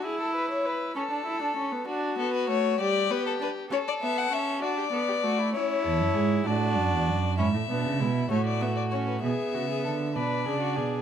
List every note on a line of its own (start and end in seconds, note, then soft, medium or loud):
0.05 0.95 E4 medium
0.05 0.20 G#4 medium
0.20 0.35 A4 medium
0.35 0.50 B4 medium
0.51 0.67 C#5 medium
0.66 0.95 B4 medium
0.96 1.02 C#4 medium
0.96 1.86 A4 medium
1.11 1.25 D4 medium
1.26 1.41 E4 medium
1.42 1.56 D4 medium
1.56 1.73 C#4 medium
1.72 1.87 B3 medium
1.88 2.18 D4 medium
1.88 2.78 F#4 medium
2.18 2.51 B3 medium
2.18 2.33 A4 medium
2.34 2.49 B4 medium
2.49 2.79 A3 medium
2.49 2.79 C#5 medium
2.79 3.12 G3 medium
2.79 3.69 G4 medium
2.79 3.13 D5 medium
3.10 3.40 B3 medium
3.10 3.26 B4 medium
3.26 3.32 A4 medium
3.41 3.49 D4 medium
3.41 3.50 B4 medium
3.70 3.79 C#4 medium
3.70 4.60 A4 medium
3.70 3.78 C#5 medium
3.88 3.94 D5 medium
4.02 4.31 B3 medium
4.02 4.19 E5 medium
4.18 4.34 F#5 medium
4.32 4.64 C#4 medium
4.32 4.62 E5 medium
4.62 4.92 D4 medium
4.62 4.77 F#4 medium
4.62 5.53 D5 medium
4.78 4.84 G4 medium
4.92 5.25 B3 medium
4.92 4.99 A4 medium
5.08 5.14 G4 medium
5.23 5.56 A3 medium
5.23 5.40 F#4 medium
5.39 5.53 E4 medium
5.53 5.86 C#4 medium
5.53 6.48 E4 medium
5.53 6.45 C#5 medium
5.84 6.02 E2 medium
5.84 6.16 A4 medium
6.00 6.15 F#2 medium
6.15 6.46 G#2 medium
6.15 6.47 G#4 medium
6.46 6.79 A2 medium
6.46 7.38 D4 medium
6.46 7.37 F#4 medium
6.46 7.37 D5 medium
6.77 6.94 F#2 medium
6.92 7.10 E2 medium
7.08 7.40 F#2 medium
7.38 7.56 G#2 medium
7.38 7.46 C#4 medium
7.38 7.46 E4 medium
7.38 8.29 E5 medium
7.55 7.69 A2 medium
7.68 7.87 B2 medium
7.68 7.99 B3 medium
7.68 8.02 D4 medium
7.85 8.02 C#3 medium
8.00 8.31 B2 medium
8.00 8.08 G#3 medium
8.00 8.30 E4 medium
8.30 9.22 A2 medium
8.30 8.38 A3 medium
8.30 9.21 F#4 medium
8.30 8.46 C#5 medium
8.46 8.63 D5 medium
8.61 8.69 B3 medium
8.61 8.76 E5 medium
8.77 8.83 D5 medium
8.91 9.22 C#4 medium
8.91 8.98 C#5 medium
9.08 9.22 B4 medium
9.22 9.32 B2 medium
9.22 10.12 B3 medium
9.22 9.56 G#4 medium
9.22 10.17 E5 medium
9.54 9.86 C#3 medium
9.54 9.69 F#4 medium
9.70 9.84 G#4 medium
9.85 10.17 D3 medium
9.85 9.93 A4 medium
10.15 10.47 B2 medium
10.15 11.02 D4 medium
10.15 10.47 B4 medium
10.15 11.02 D5 medium
10.46 10.78 C#3 medium
10.46 10.59 G#4 medium
10.60 10.78 F#4 medium
10.76 11.02 B2 medium
10.76 11.02 G#4 medium